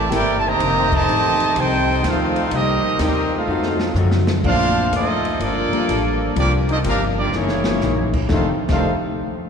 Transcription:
Already playing: upright bass A1, saxophone section C3 G3 C4 E4
0.10 upright bass G1, hollow-body jazz guitar C3 A#3 E4 A4, trombone section A#3 E4 G4, kick, snare, hi-hat pedal, ride
0.14 trumpet section E4 A#4 D5 G5
0.38 trumpet section A5
0.43 trombone section C3 D#3 A#3, trumpet section A#5
0.47 trumpet section G4 C5 D#5
0.59 upright bass F1, hollow-body jazz guitar F2 D#3 A3 D4, saxophone section G3 D#4, kick, ride
0.92 trombone section C3 D#3 A3, trumpet section G4 C5 D#5 A5, kick, crash
1.07 upright bass A1, hollow-body jazz guitar F2 D#3 A3 D4, hi-hat pedal
1.40 ride
1.55 upright bass C2, hollow-body jazz guitar F2 D#3 A3 D4, trombone section C4 D#4 G4, trumpet section D#4 C5, kick, ride
1.60 trumpet section A4 G5
2.02 upright bass D2, hollow-body jazz guitar F2 D#3 A3 D4, trombone section A3 C4 F4, kick, snare, hi-hat pedal, ride
2.07 trumpet section D#4 A4 C5 F5
2.36 ride
2.51 upright bass C2, hollow-body jazz guitar C3 A#3 D#4, saxophone section C3 A#3 D#4, trombone section G3 A#3 D#4, trumpet section C4 D#5, kick, ride
2.55 trumpet section G4 A#4, hollow-body jazz guitar G4
2.83 muted upright bass stroke
2.99 upright bass D#2, hollow-body jazz guitar C3 A#3 D#4 G4, trombone section G3 A#3 D#4, kick, snare, hi-hat pedal, ride
3.04 trumpet section C4 G4 A#4 D#5
3.32 trombone section A3 C4 F4, trumpet section F5
3.36 trumpet section D#4 A4 C5
3.47 upright bass F2, saxophone section D#3 F#3 A3 F4, hollow-body jazz guitar F3 A3 D#4 F#4
3.63 snare
3.80 snare
3.95 upright bass F#2, hollow-body jazz guitar F3 A3 D#4, hi-hat pedal, mid tom
3.99 hollow-body jazz guitar F#4
4.12 snare
4.27 snare
4.44 upright bass A#1, grand piano F3 A#3 C4 D4 A4, trombone section A3 D4 F4, hollow-body jazz guitar A#3 D4 A4, trumpet section D4 A4 C5 F5, kick, crash
4.48 hollow-body jazz guitar C5
4.92 upright bass D2, trombone section F3 A3 D#4, hollow-body jazz guitar A#3 D4 A4 C5, trumpet section C4 A4, kick, hi-hat pedal, ride
4.96 trumpet section F4 D#5
5.25 ride
5.40 upright bass G1, trombone section F3 A#3 D4, hollow-body jazz guitar G3 A#3 F4 A4, trumpet section A#3 F4 A4 D5, kick, ride
5.71 grand piano G3 A#3 D4 F4 A#4, muted upright bass stroke, ride
5.89 upright bass A1, hollow-body jazz guitar G3 A#3 F4 A4, kick, hi-hat pedal, ride
6.36 upright bass C2, hollow-body jazz guitar C3 F3 A#3 D4, grand piano G3 C4 D4 F4 A#4, trombone section G3 A#3 D4, trumpet section A#3 F4 G4 D5, kick, ride
6.69 trumpet section C4 F4 A4 D#5, trombone section D#4, ride
6.84 upright bass G1, hollow-body jazz guitar C3 F3 A#3 D4, trombone section G3 A#3 F4, trumpet section D4, kick, hi-hat pedal, ride
6.88 trumpet section G4 A#4 F5
7.19 trombone section G3 A#3 D4, trumpet section A#3 F4 G4 D5
7.32 upright bass F#1, hollow-body jazz guitar F#2 E3 A#3 D#4, trombone section E3 A#3 C#4, trumpet section A#3 E4 G#4 C#5, snare
7.49 snare
7.64 grand piano F#3 A#3 D#4 E4 G#4, snare
7.81 upright bass A#1, hollow-body jazz guitar F#2 E3 A#3 D#4, snare, hi-hat pedal
8.13 kick, crash
8.29 upright bass F1, trombone section F2 C3 D#3 A3, hollow-body jazz guitar F2 D#3 A3 D4, grand piano F3 A3 D4 D#4 G4, trumpet section D#4 A4 C5 F5, kick, snare
8.68 upright bass F1, trombone section F2 C3 D#3 A3, hollow-body jazz guitar F2, grand piano F3 A3 D4 D#4 G4, trumpet section A4 C5 F5, kick, snare, crash
8.72 hollow-body jazz guitar D#3 A3 D4, trumpet section D#4

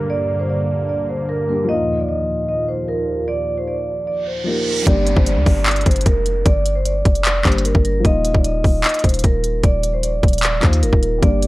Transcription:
Already playing: analog synth pad G2 D3 A#3, grand piano G3 A#3 D4 G4, downlifter
0.10 vibraphone D5
0.40 vibraphone C5
0.49 vibraphone D5
0.89 vibraphone D5
1.09 vibraphone C5
1.29 vibraphone A#4
1.47 grand piano G3 A#3 D4, vibraphone A#4
1.51 grand piano G4
1.65 grand piano F3 A#3
1.69 analog synth pad D#2 A#2 F3, grand piano D#4, vibraphone D#5
1.73 grand piano F4
1.99 vibraphone D5
2.09 vibraphone D#5
2.49 vibraphone D#5
2.68 vibraphone C5
2.88 vibraphone A#4
3.28 vibraphone D5
3.58 vibraphone C5
3.68 vibraphone D5
4.07 vibraphone D5, reverse cymbal
4.27 vibraphone C5
4.44 grand piano F3 A#3 D#4, vibraphone A#4
4.48 grand piano G4
4.67 vibraphone A#4
4.82 grand piano G3 A#3
4.87 808-style bass G1, grand piano D4, vibraphone D5, kick, closed hi-hat, downlifter
4.91 grand piano G4
5.07 closed hi-hat
5.17 808-style bass G1, vibraphone C5, kick
5.26 vibraphone D5, closed hi-hat
5.36 808-style bass D2
5.46 808-style bass G1, kick, open hi-hat
5.66 vibraphone D5, clap, closed hi-hat
5.71 closed hi-hat
5.76 closed hi-hat
5.81 closed hi-hat
5.86 808-style bass G1, vibraphone C5, kick, closed hi-hat
5.91 closed hi-hat
5.96 closed hi-hat
6.01 closed hi-hat
6.06 808-style bass F1, vibraphone A#4, kick, closed hi-hat
6.26 closed hi-hat
6.45 808-style bass G1, vibraphone D5, kick, closed hi-hat
6.66 closed hi-hat
6.75 vibraphone C5
6.85 vibraphone D5, closed hi-hat
7.05 808-style bass F1, kick, closed hi-hat
7.15 closed hi-hat
7.25 vibraphone D5, clap, closed hi-hat
7.43 808-style bass G1, grand piano G3 A#3 D4, vibraphone C5, kick, clap, closed hi-hat
7.47 grand piano G4
7.52 closed hi-hat
7.58 closed hi-hat
7.65 vibraphone A#4, closed hi-hat
7.75 808-style bass G1, kick
7.85 vibraphone A#4, closed hi-hat
8.00 grand piano F3 A#3
8.05 808-style bass D#1, grand piano D#4 F4, vibraphone D#5, kick, closed hi-hat
8.25 closed hi-hat
8.34 808-style bass D#1, vibraphone D5, kick
8.44 vibraphone D#5, closed hi-hat
8.64 808-style bass D#1, kick, open hi-hat
8.84 vibraphone D#5, clap, closed hi-hat
8.89 closed hi-hat
8.94 closed hi-hat
8.99 closed hi-hat
9.04 808-style bass D#1, vibraphone C5, kick, closed hi-hat
9.09 closed hi-hat
9.14 closed hi-hat
9.19 closed hi-hat
9.24 808-style bass D#1, vibraphone A#4, kick, closed hi-hat
9.44 closed hi-hat
9.63 808-style bass D#1, vibraphone D5, kick, closed hi-hat
9.83 closed hi-hat
9.93 vibraphone C5
10.03 vibraphone D5, closed hi-hat
10.23 808-style bass D#1, kick, closed hi-hat
10.28 closed hi-hat
10.33 closed hi-hat
10.38 closed hi-hat
10.43 vibraphone D5, clap, closed hi-hat
10.60 808-style bass D#2, grand piano F3 A#3 D#4, vibraphone C5, kick, clap, closed hi-hat
10.65 grand piano F4
10.73 closed hi-hat
10.83 808-style bass G1, vibraphone A#4, closed hi-hat
10.93 808-style bass D#1, kick
11.03 vibraphone A#4, closed hi-hat
11.18 grand piano G3 A#3
11.22 808-style bass G1, grand piano D4, vibraphone D5, kick, closed hi-hat
11.27 grand piano G4
11.42 closed hi-hat

